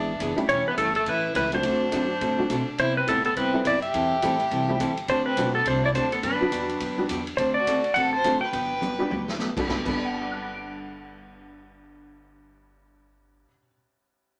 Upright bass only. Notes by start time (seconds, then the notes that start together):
Already playing: G#1
0.20 F#1
0.38 muted upright bass stroke
0.49 E1
0.78 G1
1.06 A1
1.35 C#2
1.64 D2
1.92 F#2
2.21 A2
2.50 B2
2.79 C3
3.08 A2
3.36 G2
3.65 F#2
3.94 E2
4.22 A1
4.51 C2
4.80 G1
5.09 D2
5.37 B1
5.66 C2
5.95 D2
6.23 G2
6.41 muted upright bass stroke
6.52 E2
6.80 F#2
7.09 E2
7.38 D2
7.95 A1
8.53 G1
9.11 D2
9.68 G1
9.85 G1